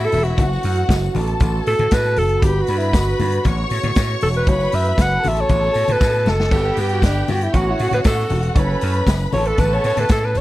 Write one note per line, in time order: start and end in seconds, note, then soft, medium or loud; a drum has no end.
0.00 0.37 C#3 medium
0.00 2.40 A3 medium
0.00 0.36 B3 medium
0.00 0.37 E4 medium
0.00 3.41 F#4 medium
0.00 0.37 E5 medium
0.05 0.25 A4 loud
0.12 0.31 E1 medium
0.12 open hi-hat medium
0.12 tambourine soft
0.12 muted conga soft
0.12 low conga medium
0.24 0.99 F#4 medium
0.24 closed hi-hat soft
0.38 0.56 F#1 medium
0.38 1.14 E3 medium
0.38 1.15 C#4 medium
0.38 1.14 F#4 medium
0.38 1.14 F#5 medium
0.38 kick loud
0.38 closed hi-hat medium
0.38 tambourine medium
0.38 muted conga soft
0.38 low conga medium
0.53 tambourine soft
0.63 0.82 F#2 loud
0.63 open hi-hat medium
0.63 tambourine medium
0.63 muted conga soft
0.76 closed hi-hat soft
0.89 1.07 F#1 medium
0.89 kick loud
0.89 snare medium
0.89 closed hi-hat medium
0.89 tambourine medium
0.89 muted conga soft
1.15 1.33 A1 medium
1.15 2.42 C#3 medium
1.15 2.42 B3 medium
1.15 2.41 A4 medium
1.15 2.40 A5 medium
1.15 open hi-hat medium
1.15 tambourine medium
1.15 muted conga soft
1.15 high conga medium
1.15 low conga medium
1.27 closed hi-hat soft
1.40 1.59 A1 medium
1.40 kick loud
1.40 closed hi-hat medium
1.40 tambourine medium
1.40 muted conga soft
1.40 high conga medium
1.66 1.76 A2 loud
1.66 1.95 A4 loud
1.66 open hi-hat medium
1.66 tambourine medium
1.79 1.88 A2 medium
1.79 closed hi-hat soft
1.79 high conga medium
1.91 2.19 A2 medium
1.91 2.20 B4 loud
1.91 kick loud
1.91 snare loud
1.91 closed hi-hat medium
1.91 tambourine medium
1.91 muted conga soft
2.05 snare soft
2.16 2.35 F#1 medium
2.16 2.45 A4 loud
2.16 open hi-hat medium
2.16 tambourine soft
2.16 low conga medium
2.29 closed hi-hat soft
2.42 2.61 G1 medium
2.42 3.44 D3 medium
2.42 3.44 G3 medium
2.42 4.46 B3 medium
2.42 2.63 G4 medium
2.42 3.44 B4 medium
2.42 3.44 B5 medium
2.42 kick loud
2.42 closed hi-hat medium
2.42 tambourine medium
2.42 muted conga soft
2.42 low conga medium
2.62 2.80 F#4 medium
2.67 2.96 G2 loud
2.67 open hi-hat medium
2.67 tambourine soft
2.78 2.97 E4 medium
2.78 closed hi-hat soft
2.78 tambourine soft
2.93 3.12 G1 loud
2.93 3.71 F#4 medium
2.93 kick loud
2.93 snare medium
2.93 closed hi-hat medium
2.93 tambourine loud
2.93 muted conga soft
3.19 3.38 G2 medium
3.19 open hi-hat medium
3.19 tambourine soft
3.19 high conga medium
3.19 low conga medium
3.32 closed hi-hat soft
3.44 3.63 A1 loud
3.44 4.46 C#3 medium
3.44 5.22 A3 medium
3.44 6.49 F#4 medium
3.44 4.46 C#5 medium
3.44 4.46 C#6 medium
3.44 kick loud
3.44 closed hi-hat medium
3.44 tambourine medium
3.44 muted conga soft
3.44 high conga medium
3.70 3.80 A2 medium
3.70 open hi-hat medium
3.70 tambourine medium
3.70 muted conga soft
3.83 3.92 A2 loud
3.83 closed hi-hat soft
3.83 tambourine soft
3.83 high conga medium
3.95 4.15 A2 medium
3.95 kick loud
3.95 snare loud
3.95 closed hi-hat medium
3.95 tambourine loud
3.95 muted conga soft
4.21 4.40 E1 medium
4.21 4.28 A4 medium
4.21 open hi-hat medium
4.21 tambourine medium
4.21 muted conga soft
4.21 low conga medium
4.34 4.50 B4 medium
4.34 closed hi-hat soft
4.47 4.66 F#1 medium
4.47 5.23 E3 medium
4.47 5.24 C#4 medium
4.47 5.23 B4 medium
4.47 4.76 C#5 loud
4.47 5.23 B5 medium
4.47 kick loud
4.47 closed hi-hat medium
4.47 tambourine medium
4.47 muted conga soft
4.47 low conga medium
4.60 tambourine soft
4.72 4.91 F#2 medium
4.72 4.87 E5 medium
4.72 open hi-hat medium
4.72 tambourine soft
4.72 muted conga soft
4.85 5.03 E5 medium
4.85 closed hi-hat soft
4.85 tambourine soft
4.98 5.16 F#1 medium
4.98 5.29 F#5 loud
4.98 kick loud
4.98 snare medium
4.98 closed hi-hat medium
4.98 tambourine loud
5.22 5.43 A1 loud
5.22 6.51 C#3 medium
5.22 6.51 A3 medium
5.22 8.53 B3 medium
5.22 6.49 A4 medium
5.22 6.49 A5 medium
5.22 open hi-hat medium
5.22 tambourine soft
5.22 muted conga soft
5.22 high conga medium
5.22 low conga medium
5.28 5.42 E5 loud
5.36 5.94 C#5 loud
5.36 closed hi-hat soft
5.36 tambourine soft
5.49 5.68 A1 medium
5.49 kick loud
5.49 closed hi-hat medium
5.49 tambourine medium
5.49 muted conga soft
5.49 high conga medium
5.74 5.84 A2 medium
5.74 open hi-hat medium
5.74 tambourine medium
5.74 muted conga soft
5.88 5.98 A2 medium
5.88 closed hi-hat soft
5.88 tambourine soft
5.88 high conga medium
5.92 6.31 B4 loud
6.01 6.28 A2 medium
6.01 kick loud
6.01 snare medium
6.01 tambourine medium
6.01 muted conga soft
6.26 6.45 F#1 medium
6.26 6.82 A4 medium
6.26 snare medium
6.26 tambourine medium
6.26 muted conga soft
6.26 high conga soft
6.26 low conga medium
6.40 snare medium
6.51 6.70 G1 medium
6.51 7.53 D3 medium
6.51 7.53 G3 medium
6.51 7.27 B3 medium
6.51 7.52 G4 medium
6.51 7.27 G4 medium
6.51 7.27 B4 medium
6.51 7.52 G5 medium
6.51 kick loud
6.51 tambourine medium
6.51 crash medium
6.51 muted conga soft
6.51 low conga medium
6.76 7.04 G2 loud
6.76 6.94 G4 medium
6.76 open hi-hat medium
6.76 tambourine medium
6.76 muted conga soft
6.89 7.04 F#4 medium
6.89 closed hi-hat soft
6.89 tambourine soft
7.02 7.21 G1 loud
7.02 7.32 D4 medium
7.02 kick medium
7.02 snare medium
7.02 closed hi-hat medium
7.02 tambourine medium
7.28 7.47 G2 medium
7.28 7.45 F#4 medium
7.28 open hi-hat medium
7.28 tambourine medium
7.28 muted conga soft
7.28 high conga medium
7.28 low conga medium
7.41 7.57 E4 medium
7.41 closed hi-hat soft
7.53 7.72 A1 loud
7.53 8.55 C#3 medium
7.53 8.55 A3 medium
7.53 8.29 C#4 medium
7.53 8.29 E4 medium
7.53 8.29 F#4 medium
7.53 8.55 F#4 medium
7.53 7.72 F#4 medium
7.53 8.29 C#5 medium
7.53 8.55 F#5 medium
7.53 kick loud
7.53 closed hi-hat soft
7.53 tambourine medium
7.53 high conga medium
7.70 7.81 E4 medium
7.79 7.89 A2 loud
7.79 7.93 F#4 medium
7.79 open hi-hat soft
7.79 tambourine medium
7.79 muted conga soft
7.91 8.02 A2 loud
7.91 7.99 B4 medium
7.91 closed hi-hat soft
7.91 high conga medium
8.04 8.23 A2 loud
8.04 8.54 A4 medium
8.04 kick loud
8.04 snare loud
8.04 closed hi-hat medium
8.04 tambourine loud
8.19 snare soft
8.29 8.49 E1 medium
8.29 open hi-hat medium
8.29 tambourine medium
8.29 muted conga soft
8.29 low conga medium
8.43 closed hi-hat soft
8.56 8.74 F#1 loud
8.56 9.33 E3 medium
8.56 10.41 A3 medium
8.56 9.06 C#4 medium
8.56 9.33 C#4 medium
8.56 9.06 F#4 medium
8.56 9.06 A4 medium
8.56 9.32 B4 medium
8.56 9.06 C#5 medium
8.56 9.32 B5 medium
8.56 kick loud
8.56 closed hi-hat medium
8.56 tambourine medium
8.56 muted conga soft
8.56 low conga medium
8.81 9.00 F#2 loud
8.81 open hi-hat medium
8.81 tambourine medium
8.94 closed hi-hat soft
8.94 tambourine soft
9.07 9.25 F#1 loud
9.07 kick medium
9.07 snare loud
9.07 closed hi-hat medium
9.07 tambourine loud
9.33 9.51 A1 loud
9.33 10.41 C#3 medium
9.33 10.41 B3 medium
9.33 10.34 B3 medium
9.33 10.34 E4 medium
9.33 10.33 F#4 medium
9.33 10.41 A4 medium
9.33 10.34 B4 medium
9.33 9.48 C#5 medium
9.33 10.41 A5 medium
9.33 open hi-hat medium
9.33 tambourine soft
9.33 high conga medium
9.33 low conga medium
9.45 9.61 A4 loud
9.45 closed hi-hat soft
9.58 9.77 A1 loud
9.58 9.75 B4 medium
9.58 kick loud
9.58 closed hi-hat medium
9.58 tambourine medium
9.58 high conga medium
9.73 9.85 C#5 medium
9.84 9.93 A2 medium
9.84 10.01 C#5 medium
9.84 open hi-hat soft
9.84 tambourine medium
9.84 muted conga soft
9.97 10.06 A2 medium
9.97 10.11 B4 medium
9.97 closed hi-hat soft
9.97 tambourine soft
9.97 high conga medium
10.09 10.37 A2 loud
10.09 10.26 A4 loud
10.09 kick loud
10.09 snare loud
10.09 closed hi-hat medium
10.09 tambourine loud
10.24 10.39 B4 loud
10.35 10.41 F#1 medium
10.35 10.41 C#5 loud
10.35 open hi-hat medium
10.35 tambourine medium
10.35 muted conga soft
10.35 low conga medium